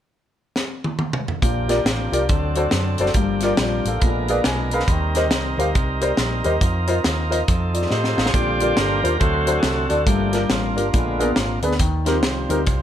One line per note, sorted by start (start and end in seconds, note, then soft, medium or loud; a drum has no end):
0.56 snare medium
0.84 high tom medium
0.99 high tom medium
1.13 mid tom medium
1.28 floor tom medium
1.42 1.79 A#1 medium
1.42 2.08 A#2 medium
1.42 2.28 F3 medium
1.42 2.28 A#3 medium
1.42 3.99 D4 medium
1.42 2.28 G4 medium
1.42 kick medium
1.42 closed hi-hat medium
1.69 1.77 F4 medium
1.69 1.77 G4 medium
1.69 1.77 A#4 medium
1.69 1.78 D5 medium
1.69 snare soft
1.69 closed hi-hat medium
1.85 2.08 A1 medium
1.85 snare loud
1.85 closed hi-hat medium
2.12 2.26 C2 medium
2.12 2.20 F4 medium
2.12 2.21 G4 medium
2.12 2.21 A#4 medium
2.12 2.21 D5 medium
2.12 closed hi-hat medium
2.29 2.66 D2 loud
2.29 2.95 D3 medium
2.29 3.15 F#3 medium
2.29 3.14 C4 soft
2.29 3.14 A4 medium
2.29 kick loud
2.29 closed hi-hat medium
2.55 2.64 F#4 medium
2.55 2.64 A4 medium
2.55 2.65 C5 medium
2.55 2.65 D5 medium
2.55 closed hi-hat medium
2.71 2.95 F#2 medium
2.71 snare medium
2.71 closed hi-hat medium
2.98 3.13 F#1 medium
2.98 3.07 F#4 medium
2.98 3.08 A4 medium
2.98 3.08 C5 medium
2.98 3.08 D5 medium
2.98 closed hi-hat medium
3.06 snare soft
3.14 3.51 G1 medium
3.14 3.82 G2 medium
3.14 4.00 F3 medium
3.14 4.01 A#3 medium
3.14 4.00 G4 medium
3.14 kick medium
3.14 closed hi-hat medium
3.40 3.51 F4 medium
3.40 3.51 G4 medium
3.40 3.51 A#4 medium
3.40 3.51 D5 medium
3.40 snare soft
3.40 closed hi-hat medium
3.57 3.81 A#1 medium
3.57 3.85 D5 medium
3.57 snare loud
3.57 closed hi-hat medium
3.62 3.85 F4 medium
3.85 3.99 A1 medium
3.85 4.27 A4 medium
3.85 4.27 F5 medium
3.85 closed hi-hat medium
4.00 4.39 A#1 loud
4.00 4.68 A#2 medium
4.00 4.87 G#3 medium
4.00 4.87 B3 medium
4.00 4.87 D4 medium
4.00 7.43 A#4 medium
4.00 kick loud
4.00 closed hi-hat medium
4.28 4.37 G#4 medium
4.28 4.37 A#4 medium
4.28 4.37 B4 medium
4.28 4.38 D5 medium
4.28 4.44 F5 medium
4.28 closed hi-hat medium
4.44 4.82 B1 medium
4.44 4.71 G#5 medium
4.44 snare medium
4.44 closed hi-hat medium
4.71 4.81 G#4 medium
4.71 4.81 A#4 medium
4.71 4.81 B4 medium
4.71 4.81 F5 medium
4.71 4.88 B5 medium
4.71 closed hi-hat medium
4.80 snare soft
4.88 5.31 D#2 loud
4.88 5.55 D#3 medium
4.88 6.59 G3 medium
4.88 7.45 C4 medium
4.88 7.91 D#4 medium
4.88 kick medium
4.88 closed hi-hat medium
5.15 5.23 G4 medium
5.15 5.24 A#4 medium
5.15 5.24 C5 medium
5.15 5.24 D#5 medium
5.15 snare soft
5.15 closed hi-hat medium
5.31 5.54 C2 medium
5.31 snare loud
5.31 closed hi-hat medium
5.58 5.72 D2 medium
5.58 5.67 G4 medium
5.58 5.67 A#4 medium
5.58 5.67 C5 medium
5.58 5.67 F5 medium
5.58 closed hi-hat medium
5.75 6.12 C2 medium
5.75 kick loud
5.75 closed hi-hat medium
6.01 6.09 G4 medium
6.01 6.10 A#4 medium
6.01 6.10 C5 medium
6.01 6.10 D5 medium
6.01 closed hi-hat medium
6.17 6.41 A#1 medium
6.17 snare medium
6.17 closed hi-hat medium
6.44 6.59 D#2 medium
6.44 6.53 G4 medium
6.44 6.53 A#4 medium
6.44 6.53 C5 medium
6.44 6.53 D#5 medium
6.44 closed hi-hat medium
6.61 6.98 F2 loud
6.61 8.33 F3 medium
6.61 kick loud
6.61 closed hi-hat medium
6.87 6.96 F4 medium
6.87 6.96 A#4 medium
6.87 6.96 C5 medium
6.87 6.97 D#5 medium
6.87 closed hi-hat medium
7.04 7.41 D#2 medium
7.04 snare medium
7.04 closed hi-hat medium
7.30 7.39 F4 medium
7.30 7.39 A#4 medium
7.30 7.39 C5 medium
7.30 7.39 D#5 medium
7.30 closed hi-hat medium
7.48 7.85 F2 medium
7.48 8.33 C4 soft
7.48 7.90 A4 medium
7.48 kick loud
7.48 closed hi-hat medium
7.74 7.90 F4 soft
7.74 7.90 D5 medium
7.74 closed hi-hat medium
7.90 8.13 A2 medium
7.90 8.32 D#4 medium
7.90 8.16 G4 medium
7.90 8.31 A4 medium
7.90 8.30 C5 medium
7.90 8.16 D#5 medium
7.90 snare soft
8.04 snare medium
8.17 8.31 A1 medium
8.17 8.58 A4 soft
8.17 8.58 F5 medium
8.17 snare medium
8.26 8.34 C#5 medium
8.26 snare medium
8.33 8.71 A#1 loud
8.33 9.00 A#2 medium
8.33 9.00 D3 medium
8.33 9.00 G3 soft
8.33 9.01 C4 soft
8.33 9.17 F4 medium
8.33 8.77 G4 medium
8.33 8.79 D5 medium
8.33 kick medium
8.33 closed hi-hat medium
8.60 8.69 F4 medium
8.60 8.69 G4 medium
8.60 8.69 A#4 medium
8.60 8.70 D5 medium
8.60 closed hi-hat medium
8.77 9.00 G1 medium
8.77 9.17 D4 medium
8.77 9.18 G4 medium
8.77 9.22 A#4 loud
8.77 snare loud
8.77 closed hi-hat medium
9.03 9.18 D#2 medium
9.03 9.12 F4 medium
9.03 9.12 G4 medium
9.03 9.12 A#4 medium
9.03 9.12 C5 medium
9.03 closed hi-hat medium
9.19 9.58 D2 medium
9.19 9.86 D3 medium
9.19 9.86 F#3 soft
9.19 9.87 A3 soft
9.19 9.64 C4 soft
9.19 9.63 F#4 medium
9.19 9.63 A4 medium
9.19 9.59 C5 medium
9.19 kick loud
9.19 closed hi-hat medium
9.47 9.55 D4 medium
9.47 9.55 F#4 medium
9.47 9.56 A4 medium
9.47 9.56 C5 medium
9.47 closed hi-hat medium
9.59 9.64 G#4 medium
9.63 9.86 C2 medium
9.63 10.04 C4 medium
9.63 10.04 F#4 medium
9.63 10.08 A4 medium
9.63 snare loud
9.63 closed hi-hat medium
9.89 10.05 D2 medium
9.89 9.98 D4 medium
9.89 9.98 F#4 medium
9.89 9.99 A4 medium
9.89 9.99 D5 medium
9.89 closed hi-hat medium
10.06 10.43 G1 medium
10.06 10.72 G2 medium
10.06 10.38 F3 soft
10.06 10.38 A3 soft
10.06 10.50 A#3 medium
10.06 10.49 D4 medium
10.06 10.52 G4 medium
10.06 kick loud
10.06 closed hi-hat medium
10.33 10.42 D4 medium
10.33 10.42 F4 medium
10.33 10.42 G4 medium
10.33 10.42 A#4 medium
10.33 snare soft
10.33 closed hi-hat medium
10.50 10.77 A1 medium
10.50 11.60 A#3 medium
10.50 11.60 D4 medium
10.50 11.59 F4 medium
10.50 snare medium
10.50 closed hi-hat medium
10.76 10.91 G1 medium
10.76 10.85 D4 medium
10.76 10.85 F4 medium
10.76 10.85 G4 medium
10.76 10.85 A#4 medium
10.76 closed hi-hat medium
10.92 11.30 A#1 medium
10.92 11.59 A#2 medium
10.92 11.24 D3 soft
10.92 11.25 G#3 soft
10.92 11.25 B3 medium
10.92 kick loud
10.92 closed hi-hat medium
11.19 11.28 B3 medium
11.19 11.28 D4 medium
11.19 11.28 G#4 medium
11.19 11.28 A#4 medium
11.19 closed hi-hat medium
11.36 11.59 G#1 medium
11.36 snare medium
11.36 closed hi-hat medium
11.62 11.77 D2 medium
11.62 11.71 B3 medium
11.62 11.72 D4 medium
11.62 11.72 G#4 medium
11.62 11.72 B4 medium
11.62 closed hi-hat medium
11.71 snare soft
11.79 12.23 D#2 loud
11.79 12.46 D#3 medium
11.79 kick medium
11.79 closed hi-hat medium
12.05 12.65 F3 medium
12.05 12.64 G3 medium
12.05 12.15 C4 medium
12.05 12.65 C4 medium
12.05 12.15 D#4 medium
12.05 12.15 G4 medium
12.05 12.15 A#4 medium
12.05 snare soft
12.05 closed hi-hat medium
12.23 12.46 C2 medium
12.23 snare loud
12.23 closed hi-hat medium
12.49 12.64 D2 medium
12.49 12.58 C4 medium
12.49 12.58 D#4 medium
12.49 12.58 G4 medium
12.49 12.58 A#4 medium
12.49 closed hi-hat medium
12.65 12.82 C2 medium
12.65 12.82 F3 soft
12.65 12.82 G3 soft
12.65 12.82 C4 soft
12.65 kick loud
12.65 closed hi-hat medium